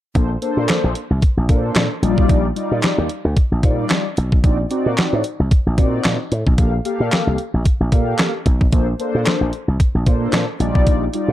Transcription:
0.15 0.36 A#1 loud
0.15 0.29 A#3 medium
0.15 0.29 D4 medium
0.15 0.29 A4 medium
0.15 0.30 C5 medium
0.15 kick loud
0.15 closed hi-hat medium
0.42 0.94 A#3 medium
0.42 0.94 D4 medium
0.42 0.94 A4 medium
0.42 0.94 C5 medium
0.42 closed hi-hat medium
0.57 0.66 A#2 medium
0.68 snare loud
0.68 clap medium
0.68 closed hi-hat medium
0.84 0.93 A#1 medium
0.95 closed hi-hat medium
1.10 1.20 C2 medium
1.22 kick loud
1.22 closed hi-hat medium
1.37 1.46 A#1 medium
1.49 1.69 A#2 medium
1.49 1.89 A#3 medium
1.49 1.89 D4 medium
1.49 1.90 A4 medium
1.49 1.57 A#4 medium
1.49 kick medium
1.49 closed hi-hat medium
1.56 1.93 C5 medium
1.75 1.87 A#2 loud
1.75 snare loud
1.75 clap medium
1.75 closed hi-hat medium
2.02 2.14 A#1 medium
2.02 2.47 G3 medium
2.02 2.47 D#4 medium
2.02 2.47 F4 medium
2.02 2.47 D5 loud
2.02 closed hi-hat medium
2.18 2.27 B1 medium
2.18 kick medium
2.29 2.50 A#1 loud
2.29 kick loud
2.29 closed hi-hat medium
2.55 3.08 G3 medium
2.55 3.08 D#4 medium
2.55 3.08 F4 medium
2.55 3.08 D5 loud
2.55 closed hi-hat medium
2.71 2.80 A#2 medium
2.82 snare loud
2.82 clap medium
2.82 closed hi-hat medium
2.98 3.07 D#2 medium
3.09 closed hi-hat medium
3.25 3.34 D2 medium
3.37 kick loud
3.37 closed hi-hat medium
3.52 3.61 A#1 medium
3.63 3.84 A#2 medium
3.63 4.03 G3 medium
3.63 4.04 D#4 medium
3.63 4.04 F4 medium
3.63 3.71 C5 medium
3.63 kick medium
3.63 closed hi-hat medium
3.70 4.07 D5 medium
3.90 snare loud
3.90 clap medium
3.90 closed hi-hat medium
4.17 4.38 B1 medium
4.17 closed hi-hat medium
4.32 kick medium
4.44 4.64 A#1 loud
4.44 4.58 C4 medium
4.44 4.58 D#4 medium
4.44 4.58 F#4 medium
4.44 4.59 D5 medium
4.44 kick loud
4.44 closed hi-hat medium
4.70 5.22 C4 medium
4.70 5.23 D#4 medium
4.70 5.23 F#4 medium
4.70 5.23 D5 medium
4.70 closed hi-hat medium
4.86 4.95 A#2 loud
4.97 snare loud
4.97 clap medium
4.97 closed hi-hat medium
5.13 5.22 A2 medium
5.24 closed hi-hat medium
5.40 5.48 C2 medium
5.51 kick loud
5.51 closed hi-hat medium
5.66 5.75 A#1 medium
5.77 5.98 A#2 medium
5.77 6.18 C4 medium
5.77 6.18 D#4 medium
5.77 6.18 F#4 medium
5.77 6.18 D5 medium
5.77 kick medium
5.77 closed hi-hat medium
6.04 6.16 A#2 medium
6.04 snare loud
6.04 clap medium
6.04 closed hi-hat medium
6.32 6.43 A2 medium
6.32 closed hi-hat medium
6.47 6.56 B1 medium
6.47 kick medium
6.58 6.79 A#1 loud
6.58 6.72 A#3 medium
6.58 6.72 G4 medium
6.58 6.72 A4 medium
6.58 6.73 F5 medium
6.58 kick loud
6.58 closed hi-hat medium
6.85 7.37 A#3 medium
6.85 7.37 G4 medium
6.85 7.37 A4 medium
6.85 7.37 F5 medium
6.85 closed hi-hat medium
7.00 7.09 A#2 loud
7.12 snare loud
7.12 clap medium
7.12 closed hi-hat medium
7.27 7.36 C2 medium
7.38 closed hi-hat medium
7.54 7.63 A#1 medium
7.66 kick loud
7.66 closed hi-hat medium
7.80 7.89 A#1 medium
7.92 8.12 A#2 medium
7.92 8.32 A#3 medium
7.92 8.32 G4 medium
7.92 8.32 A4 medium
7.92 8.33 F5 medium
7.92 kick medium
7.92 closed hi-hat medium
8.18 snare loud
8.18 clap medium
8.18 closed hi-hat medium
8.46 8.66 B1 medium
8.46 kick medium
8.46 closed hi-hat medium
8.61 kick medium
8.72 8.93 A#1 loud
8.72 8.86 A#3 medium
8.72 8.86 D4 medium
8.72 8.87 A4 medium
8.72 8.87 C5 medium
8.72 kick loud
8.72 closed hi-hat loud
8.99 9.51 A#3 medium
8.99 9.51 D4 medium
8.99 9.51 A4 medium
8.99 9.52 C5 medium
8.99 closed hi-hat medium
9.15 9.23 A#2 medium
9.26 snare loud
9.26 clap medium
9.26 closed hi-hat medium
9.41 9.50 A#1 medium
9.53 closed hi-hat medium
9.68 9.77 C2 medium
9.80 kick loud
9.80 closed hi-hat medium
9.95 10.04 A#1 medium
10.06 10.27 A#2 medium
10.06 10.47 A#3 medium
10.06 10.47 D4 medium
10.06 10.47 A4 medium
10.06 10.47 C5 medium
10.06 kick medium
10.06 closed hi-hat medium
10.33 10.44 A#2 medium
10.33 snare loud
10.33 clap medium
10.33 closed hi-hat medium
10.60 10.71 A#1 medium
10.60 11.04 G3 medium
10.60 11.04 D#4 medium
10.60 11.04 F4 medium
10.60 11.04 D5 loud
10.60 closed hi-hat medium
10.75 10.84 B1 medium
10.75 kick medium
10.87 11.07 A#1 loud
10.87 kick loud
10.87 closed hi-hat medium
11.14 11.32 G3 medium
11.14 11.32 D#4 medium
11.14 11.32 F4 medium
11.14 11.32 D5 medium
11.14 closed hi-hat medium
11.28 11.32 A#2 medium

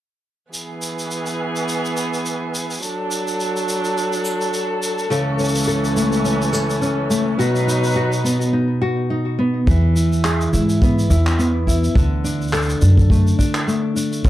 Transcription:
0.53 2.79 E3 medium
0.53 2.79 B3 medium
0.53 2.79 G#4 medium
0.53 shaker medium
0.82 shaker medium
0.99 shaker soft
1.11 shaker soft
1.26 shaker soft
1.56 shaker soft
1.69 shaker soft
1.85 shaker soft
1.97 shaker medium
2.14 shaker soft
2.26 shaker medium
2.55 shaker medium
2.70 shaker soft
2.73 shaker soft
2.77 shaker soft
2.79 shaker soft
2.81 5.08 F#3 medium
2.81 5.08 D4 medium
2.81 7.35 A4 medium
2.81 shaker soft
2.82 shaker soft
3.11 shaker medium
3.28 shaker soft
3.40 shaker soft
3.57 shaker soft
3.69 shaker medium
3.84 shaker soft
3.98 shaker medium
4.13 shaker soft
4.25 shaker medium
4.41 shaker soft
4.54 shaker medium
4.83 shaker medium
4.98 shaker soft
5.10 7.36 C#2 medium
5.10 7.38 C#3 medium
5.10 7.36 E3 medium
5.10 7.36 C#4 medium
5.10 5.66 A4 medium
5.10 shaker soft
5.39 6.23 C#4 soft
5.39 shaker soft
5.44 shaker soft
5.48 shaker soft
5.55 shaker medium
5.55 shaker soft
5.58 shaker medium
5.63 shaker medium
5.67 6.52 A4 medium
5.67 shaker soft
5.85 shaker soft
5.96 7.09 A3 medium
5.96 shaker medium
6.12 shaker soft
6.24 6.80 C#4 medium
6.24 shaker medium
6.42 shaker soft
6.53 7.39 A4 medium
6.53 shaker medium
6.70 shaker soft
6.82 7.45 C#4 medium
6.82 shaker soft
7.10 7.45 A3 medium
7.10 shaker medium
7.39 9.67 B2 medium
7.39 8.52 F#3 medium
7.39 8.52 D#4 medium
7.39 7.95 F#4 medium
7.39 8.52 B4 medium
7.39 shaker soft
7.56 shaker soft
7.67 8.52 D#4 medium
7.67 shaker medium
7.84 shaker soft
7.86 shaker soft
7.90 shaker soft
7.92 shaker soft
7.94 8.80 F#4 medium
7.94 shaker soft
8.13 shaker soft
8.24 9.38 B3 medium
8.24 shaker medium
8.41 shaker soft
8.53 9.09 D#4 medium
8.82 9.74 F#4 medium
9.10 9.74 D#4 medium
9.39 10.81 B3 medium
9.67 10.45 E2 medium
9.67 11.96 E3 medium
9.67 kick loud
9.67 shaker soft
9.96 10.52 E4 medium
9.96 shaker medium
10.13 shaker soft
10.24 12.02 G#4 medium
10.24 clap medium
10.24 shaker medium
10.41 shaker soft
10.53 11.03 G#2 medium
10.53 11.09 E4 medium
10.53 shaker medium
10.69 shaker soft
10.82 11.38 B3 medium
10.82 kick loud
10.82 shaker soft
10.99 shaker soft
11.10 11.88 E2 medium
11.10 11.66 E4 medium
11.10 shaker medium
11.27 clap medium
11.27 shaker soft
11.39 12.02 B3 medium
11.39 shaker medium
11.67 12.02 E4 medium
11.67 kick medium
11.67 shaker medium
11.84 shaker soft
11.95 12.74 D2 medium
11.95 14.24 D3 medium
11.95 kick loud
11.95 shaker medium
12.24 12.80 D4 medium
12.24 shaker medium
12.42 shaker soft
12.48 shaker soft
12.53 14.30 A4 medium
12.53 clap medium
12.53 shaker soft
12.62 shaker soft
12.69 shaker soft
12.81 13.31 F#2 medium
12.81 13.37 D4 medium
12.81 shaker medium
12.97 kick loud
12.97 shaker soft
13.10 13.67 A3 medium
13.10 kick loud
13.10 shaker medium
13.27 shaker soft
13.39 13.95 D4 medium
13.39 kick medium
13.39 shaker medium
13.54 clap medium
13.54 shaker soft
13.67 14.30 A3 medium
13.67 shaker soft
13.96 14.30 D4 medium
13.96 shaker medium
14.13 shaker soft
14.25 14.30 C#2 medium
14.25 14.30 C#3 medium
14.25 kick loud
14.25 shaker medium

